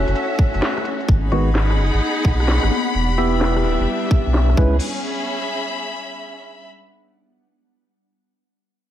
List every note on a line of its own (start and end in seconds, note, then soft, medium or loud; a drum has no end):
0.00 1.07 A3 medium
0.00 1.07 C#4 medium
0.00 1.08 C#4 loud
0.00 1.85 C#4 medium
0.00 1.05 E4 medium
0.00 1.08 F#4 medium
0.00 1.85 F#4 medium
0.00 1.08 A4 medium
0.00 1.09 E5 medium
0.00 1.08 F#5 loud
0.00 1.05 G#5 medium
0.08 0.14 F#1 medium
0.08 closed hi-hat medium
0.16 closed hi-hat medium
0.39 kick loud
0.39 closed hi-hat loud
0.54 0.61 F#1 loud
0.54 closed hi-hat medium
0.62 snare loud
0.77 cross-stick medium
0.77 closed hi-hat medium
0.85 closed hi-hat loud
1.01 closed hi-hat soft
1.08 1.80 G#1 loud
1.08 2.93 A#3 medium
1.08 4.54 B3 medium
1.08 2.95 D#4 medium
1.08 2.93 D#4 medium
1.08 4.54 F#5 medium
1.08 kick loud
1.08 closed hi-hat medium
1.21 2.95 G#4 medium
1.21 4.58 B5 medium
1.32 1.50 D#3 loud
1.32 1.50 G#3 medium
1.32 1.50 B3 medium
1.32 1.50 F#4 loud
1.32 closed hi-hat loud
1.55 3.71 F#5 medium
1.55 snare loud
1.70 cross-stick medium
1.70 closed hi-hat soft
1.78 1.91 F#1 loud
1.78 closed hi-hat loud
1.94 2.00 G#1 loud
1.94 closed hi-hat medium
2.01 closed hi-hat medium
2.25 2.59 B1 medium
2.25 kick loud
2.25 closed hi-hat loud
2.40 cross-stick medium
2.40 closed hi-hat medium
2.48 snare loud
2.63 2.70 G#1 loud
2.63 cross-stick medium
2.63 closed hi-hat medium
2.71 closed hi-hat loud
2.87 closed hi-hat soft
2.95 3.66 E1 loud
2.95 4.56 G3 medium
2.95 4.56 D4 medium
2.95 4.58 D4 medium
2.95 closed hi-hat medium
3.06 4.57 G3 medium
3.18 4.56 B3 medium
3.18 4.56 E4 medium
3.18 4.56 G4 medium
3.18 4.56 E5 loud
3.18 closed hi-hat loud
3.41 snare loud
3.57 cross-stick medium
3.57 closed hi-hat soft
3.61 3.77 D1 loud
3.61 4.57 E5 medium
3.61 closed hi-hat loud
3.80 3.86 E1 loud
3.80 closed hi-hat medium
3.88 closed hi-hat medium
4.11 kick loud
4.11 closed hi-hat loud
4.26 4.55 B1 loud
4.26 closed hi-hat medium
4.34 snare loud
4.50 cross-stick medium
4.50 closed hi-hat medium
4.57 4.79 C#2 medium
4.57 4.76 G#3 medium
4.57 4.76 C#4 medium
4.57 6.40 C#4 medium
4.57 4.76 E4 medium
4.57 4.76 B4 loud
4.57 kick loud
4.57 crash medium
4.67 6.40 G#4 medium
4.98 6.63 E5 medium
5.02 6.63 B5 medium